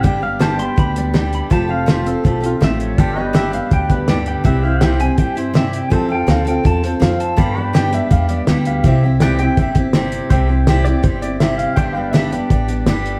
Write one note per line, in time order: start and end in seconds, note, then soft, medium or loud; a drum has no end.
0.03 0.66 G1 medium
0.03 0.22 G2 medium
0.03 0.22 D3 medium
0.03 0.22 G3 medium
0.03 0.21 B3 medium
0.03 0.21 D4 medium
0.03 0.19 G4 medium
0.03 0.22 G5 medium
0.03 kick medium
0.03 closed hi-hat medium
0.20 0.40 G3 soft
0.20 0.40 B3 soft
0.20 0.40 D4 soft
0.20 0.40 G4 soft
0.20 0.41 F5 medium
0.39 0.59 G2 medium
0.39 0.59 D3 medium
0.39 0.59 G3 medium
0.39 0.59 B3 medium
0.39 0.57 D4 medium
0.39 0.57 G4 medium
0.39 1.51 G4 medium
0.39 0.63 C5 medium
0.39 0.59 A5 loud
0.39 snare loud
0.39 closed hi-hat medium
0.45 1.52 D5 medium
0.58 0.75 G3 soft
0.58 0.76 B3 soft
0.58 0.76 D4 soft
0.58 0.77 G4 soft
0.58 0.78 C6 medium
0.58 closed hi-hat medium
0.63 1.51 B4 medium
0.76 1.40 D2 medium
0.76 0.96 G3 medium
0.76 0.95 B3 medium
0.76 0.95 D4 medium
0.76 0.94 G4 medium
0.76 0.97 B5 medium
0.76 kick loud
0.76 closed hi-hat medium
0.95 1.12 G3 soft
0.95 1.13 B3 soft
0.95 1.14 D4 soft
0.95 1.14 G4 soft
0.95 1.15 D5 medium
0.95 closed hi-hat medium
1.13 1.51 G2 medium
1.13 1.50 D3 medium
1.13 1.50 G3 medium
1.13 1.50 B3 medium
1.13 1.51 D4 medium
1.13 1.51 G4 medium
1.13 1.33 G5 medium
1.13 snare loud
1.13 closed hi-hat soft
1.33 1.52 B5 medium
1.33 closed hi-hat medium
1.50 2.13 F1 medium
1.50 1.69 F3 medium
1.50 1.69 A3 medium
1.50 1.68 C4 medium
1.50 2.97 F4 medium
1.50 1.68 F4 medium
1.50 1.67 G4 medium
1.50 2.97 A4 medium
1.50 2.98 C5 medium
1.50 1.70 A5 loud
1.50 kick loud
1.50 closed hi-hat medium
1.68 1.86 C4 soft
1.68 1.87 F4 soft
1.68 1.87 G4 soft
1.68 1.88 F5 loud
1.86 2.06 F3 medium
1.86 2.06 A3 medium
1.86 2.06 C4 medium
1.86 2.05 F4 medium
1.86 2.03 G4 medium
1.86 2.07 C5 medium
1.86 snare loud
1.86 closed hi-hat medium
2.04 2.23 C4 soft
2.04 2.24 F4 medium
2.04 2.24 G4 medium
2.04 2.25 A4 medium
2.04 closed hi-hat medium
2.24 2.56 B1 medium
2.24 2.43 A3 medium
2.24 2.41 C4 medium
2.24 2.40 F4 medium
2.24 2.39 G4 medium
2.24 2.44 A4 medium
2.24 kick medium
2.24 closed hi-hat medium
2.40 2.60 C4 soft
2.40 2.61 F4 soft
2.40 2.60 G4 medium
2.40 closed hi-hat medium
2.46 2.56 F4 medium
2.60 2.93 A1 medium
2.60 2.98 F3 medium
2.60 2.98 A3 medium
2.60 2.98 C4 medium
2.60 2.99 F4 medium
2.60 2.99 G4 medium
2.60 2.81 E5 medium
2.60 snare loud
2.60 closed hi-hat medium
2.80 2.99 C#5 medium
2.80 closed hi-hat medium
2.98 3.60 G1 medium
2.98 3.17 G2 medium
2.98 3.17 D3 medium
2.98 3.17 G3 medium
2.98 3.16 B3 medium
2.98 3.16 D4 medium
2.98 3.24 F4 medium
2.98 3.14 G4 medium
2.98 3.25 A4 medium
2.98 3.26 C5 medium
2.98 3.16 D5 medium
2.98 kick loud
2.98 closed hi-hat medium
3.16 3.32 G3 soft
3.16 3.33 B3 soft
3.16 3.33 D4 soft
3.16 3.33 G4 soft
3.16 3.34 D#5 medium
3.24 4.44 G4 medium
3.24 4.44 B4 medium
3.24 4.45 D5 medium
3.33 3.53 G2 medium
3.33 3.53 D3 medium
3.33 3.53 G3 medium
3.33 3.53 B3 medium
3.33 3.52 D4 medium
3.33 3.50 G4 loud
3.33 3.53 E5 medium
3.33 snare loud
3.33 closed hi-hat medium
3.52 3.69 G3 soft
3.52 3.70 B3 soft
3.52 3.71 D4 soft
3.52 3.71 G4 medium
3.52 3.72 F5 medium
3.52 closed hi-hat medium
3.70 4.33 D2 medium
3.70 3.90 G3 medium
3.70 3.90 B3 medium
3.70 3.90 D4 medium
3.70 3.89 G4 medium
3.70 3.90 G5 loud
3.70 kick loud
3.70 closed hi-hat medium
3.90 4.07 G3 soft
3.90 4.07 B3 soft
3.90 4.08 D4 medium
3.90 4.08 G4 medium
3.90 4.08 B4 medium
3.90 kick medium
3.90 closed hi-hat medium
4.08 4.45 G2 medium
4.08 4.43 D3 medium
4.08 4.43 G3 medium
4.08 4.44 B3 medium
4.08 4.45 D4 medium
4.08 4.45 G4 medium
4.08 4.27 D5 medium
4.08 snare loud
4.08 closed hi-hat medium
4.26 4.45 G5 loud
4.26 closed hi-hat medium
4.44 5.07 C2 medium
4.44 4.63 C3 medium
4.44 4.63 G3 medium
4.44 4.63 C4 medium
4.44 4.63 E4 medium
4.44 5.91 G4 medium
4.44 4.62 G4 medium
4.44 4.67 B4 medium
4.44 4.63 E5 medium
4.44 5.92 E5 medium
4.44 kick loud
4.44 closed hi-hat medium
4.63 4.80 C4 soft
4.63 4.81 E4 soft
4.63 4.81 G4 soft
4.63 5.91 C5 medium
4.63 4.82 F5 medium
4.81 5.00 C3 medium
4.81 5.00 G3 medium
4.81 5.00 C4 medium
4.81 4.99 E4 loud
4.81 4.98 G4 medium
4.81 5.00 G5 medium
4.81 snare loud
4.81 closed hi-hat medium
4.99 5.17 C4 soft
4.99 5.18 E4 soft
4.99 5.18 G4 medium
4.99 5.18 G#5 loud
4.99 closed hi-hat medium
5.18 5.80 G2 medium
5.18 5.36 G3 medium
5.18 5.36 C4 medium
5.18 5.35 E4 medium
5.18 5.34 G4 medium
5.18 5.37 G5 medium
5.18 kick loud
5.18 closed hi-hat medium
5.35 5.53 C4 soft
5.35 5.53 E4 medium
5.35 5.54 G4 soft
5.35 5.55 C5 medium
5.35 closed hi-hat medium
5.54 5.91 C3 medium
5.54 5.90 G3 medium
5.54 5.90 C4 medium
5.54 5.90 E4 medium
5.54 5.91 G4 medium
5.54 5.74 E5 medium
5.54 snare loud
5.54 closed hi-hat medium
5.73 5.93 G5 medium
5.73 closed hi-hat medium
5.90 6.23 F2 medium
5.90 6.09 F3 medium
5.90 6.09 C4 medium
5.90 6.09 F4 medium
5.90 6.17 G4 medium
5.90 6.07 A4 medium
5.90 7.37 C5 medium
5.90 6.14 E5 medium
5.90 6.10 A5 loud
5.90 kick loud
5.90 closed hi-hat medium
6.08 6.26 C4 soft
6.08 6.26 F4 medium
6.08 6.27 A4 medium
6.08 6.29 G5 loud
6.14 7.37 A4 medium
6.14 7.38 F5 medium
6.27 6.59 D2 medium
6.27 6.46 F3 medium
6.27 6.46 C4 medium
6.27 6.45 F4 loud
6.27 6.43 A4 medium
6.27 6.47 F5 medium
6.27 snare loud
6.27 closed hi-hat medium
6.45 6.63 C4 soft
6.45 6.64 F4 soft
6.45 6.64 A4 medium
6.45 6.65 G5 medium
6.45 closed hi-hat medium
6.64 6.96 E2 medium
6.64 6.83 F3 medium
6.64 6.83 C4 medium
6.64 6.82 F4 medium
6.64 6.82 A4 medium
6.64 6.84 A5 loud
6.64 kick loud
6.64 closed hi-hat medium
6.83 6.99 C4 soft
6.83 7.00 F4 soft
6.83 7.00 A4 medium
6.83 7.02 C5 medium
6.83 closed hi-hat medium
7.00 7.33 F2 medium
7.00 7.37 F3 medium
7.00 7.37 C4 medium
7.00 7.37 F4 medium
7.00 7.38 A4 medium
7.00 7.20 F5 medium
7.00 snare loud
7.00 closed hi-hat medium
7.20 7.38 A5 medium
7.20 closed hi-hat medium
7.36 7.56 G2 medium
7.36 8.00 G2 medium
7.36 7.56 D3 medium
7.36 7.56 G3 medium
7.36 7.56 B3 medium
7.36 7.55 D4 medium
7.36 7.54 G4 medium
7.36 7.63 A4 medium
7.36 7.64 C5 medium
7.36 7.65 F5 medium
7.36 7.73 B5 loud
7.36 kick loud
7.36 closed hi-hat medium
7.55 7.73 G3 soft
7.55 7.73 B3 soft
7.55 7.74 D4 soft
7.55 7.74 G4 soft
7.63 8.83 B4 medium
7.63 8.84 D5 medium
7.63 8.84 G5 medium
7.73 7.92 G2 medium
7.73 7.93 D3 medium
7.73 7.93 G3 medium
7.73 7.92 B3 medium
7.73 7.91 D4 medium
7.73 7.90 G4 loud
7.73 7.93 G5 medium
7.73 snare loud
7.73 closed hi-hat medium
7.91 8.09 G3 soft
7.91 8.10 B3 medium
7.91 8.10 D4 soft
7.91 8.11 G4 medium
7.91 8.11 E5 loud
7.91 closed hi-hat medium
8.10 8.42 E2 medium
8.10 8.29 G3 medium
8.10 8.29 B3 medium
8.10 8.28 D4 medium
8.10 8.27 G4 medium
8.10 8.29 F5 loud
8.10 kick loud
8.10 closed hi-hat medium
8.28 8.48 G3 soft
8.28 8.48 B3 soft
8.28 8.48 D4 medium
8.28 8.47 G4 medium
8.28 8.41 D5 loud
8.28 closed hi-hat medium
8.47 8.79 D2 medium
8.47 8.85 G2 medium
8.47 8.85 D3 medium
8.47 8.85 G3 medium
8.47 8.85 B3 medium
8.47 8.85 D4 medium
8.47 8.87 G4 medium
8.47 snare loud
8.47 closed hi-hat medium
8.65 8.86 F5 medium
8.65 closed hi-hat medium
8.84 9.46 C2 medium
8.84 9.03 C3 medium
8.84 9.03 G3 medium
8.84 9.04 C4 medium
8.84 9.04 E4 medium
8.84 9.02 G4 medium
8.84 9.22 E5 medium
8.84 kick loud
8.84 closed hi-hat medium
9.04 9.21 C4 soft
9.04 9.21 E4 soft
9.04 9.22 G4 soft
9.20 9.40 C3 medium
9.20 9.40 G3 medium
9.20 9.40 C4 loud
9.20 9.40 E4 medium
9.20 9.40 G4 loud
9.20 9.42 B4 medium
9.20 9.48 D5 medium
9.20 9.38 G5 medium
9.20 10.31 G5 medium
9.20 snare loud
9.20 closed hi-hat medium
9.39 9.59 C4 soft
9.39 9.59 E4 soft
9.39 9.59 G4 medium
9.39 10.29 C5 medium
9.39 9.57 G5 loud
9.39 closed hi-hat medium
9.48 10.30 E5 medium
9.57 10.19 G1 medium
9.57 9.77 G3 medium
9.57 9.77 C4 medium
9.57 9.76 E4 medium
9.57 9.70 E5 loud
9.57 kick loud
9.57 closed hi-hat medium
9.61 9.75 G4 medium
9.75 9.93 C4 soft
9.75 9.94 E4 medium
9.75 9.94 G4 medium
9.75 kick medium
9.75 closed hi-hat medium
9.93 10.29 C3 medium
9.93 10.29 G3 medium
9.93 10.30 C4 medium
9.93 10.30 E4 loud
9.93 10.30 G4 loud
9.93 snare loud
9.93 closed hi-hat medium
10.12 closed hi-hat medium
10.30 10.92 C2 medium
10.30 10.49 C3 loud
10.30 10.49 G3 medium
10.30 10.49 C4 medium
10.30 10.48 E4 medium
10.30 10.47 G4 medium
10.30 11.76 C5 medium
10.30 11.76 E5 medium
10.30 11.77 G5 medium
10.30 kick loud
10.30 closed hi-hat medium
10.48 10.67 C4 soft
10.48 10.67 E4 soft
10.48 10.67 G4 soft
10.67 10.86 C3 medium
10.67 10.86 G3 medium
10.67 10.86 C4 medium
10.67 10.85 E4 loud
10.67 10.84 G4 loud
10.67 snare loud
10.67 closed hi-hat medium
10.85 11.02 C4 soft
10.85 11.02 E4 soft
10.85 11.03 G4 soft
10.85 11.03 D5 medium
10.85 closed hi-hat medium
11.02 11.65 G1 medium
11.02 11.22 G3 soft
11.02 11.22 C4 medium
11.02 11.22 E4 medium
11.02 11.20 G4 medium
11.02 11.22 C5 medium
11.02 kick loud
11.02 closed hi-hat medium
11.22 11.40 C4 soft
11.22 11.40 E4 soft
11.22 11.40 G4 soft
11.22 11.40 D5 medium
11.22 closed hi-hat medium
11.40 11.76 C3 medium
11.40 11.76 G3 medium
11.40 11.76 C4 medium
11.40 11.77 E4 medium
11.40 11.78 G4 medium
11.40 11.57 E5 medium
11.40 snare loud
11.40 closed hi-hat medium
11.58 11.76 F5 medium
11.58 closed hi-hat medium
11.76 12.39 G1 medium
11.76 11.95 G2 medium
11.76 11.95 D3 medium
11.76 11.95 G3 medium
11.76 11.94 B3 medium
11.76 11.94 D4 medium
11.76 11.93 G4 medium
11.76 11.97 C5 medium
11.76 12.03 E5 medium
11.76 11.94 G5 loud
11.76 13.20 G5 medium
11.76 kick loud
11.76 closed hi-hat medium
11.93 12.12 G3 soft
11.93 12.13 B3 soft
11.93 12.13 D4 soft
11.93 12.13 G4 soft
11.93 12.11 F5 loud
11.97 13.20 B4 medium
12.03 13.20 D5 medium
12.11 12.32 G2 medium
12.11 12.32 D3 medium
12.11 12.32 G3 medium
12.11 12.31 B3 medium
12.11 12.31 D4 loud
12.11 12.30 G4 loud
12.11 12.30 E5 loud
12.11 snare loud
12.11 closed hi-hat medium
12.30 12.49 G3 soft
12.30 12.50 B3 soft
12.30 12.50 D4 medium
12.30 12.50 G4 soft
12.30 12.86 D5 medium
12.30 closed hi-hat medium
12.50 12.82 A1 medium
12.50 12.69 G3 medium
12.50 12.69 B3 medium
12.50 12.68 D4 medium
12.50 12.67 G4 medium
12.50 kick loud
12.50 closed hi-hat medium
12.68 12.86 G3 soft
12.68 12.87 B3 soft
12.68 12.87 D4 soft
12.68 12.87 G4 medium
12.68 closed hi-hat medium
12.86 13.18 G1 medium
12.86 13.20 G2 medium
12.86 13.20 D3 loud
12.86 13.20 G3 medium
12.86 13.20 B3 medium
12.86 13.20 D4 loud
12.86 13.20 G4 loud
12.86 snare loud
12.86 closed hi-hat medium
13.06 closed hi-hat medium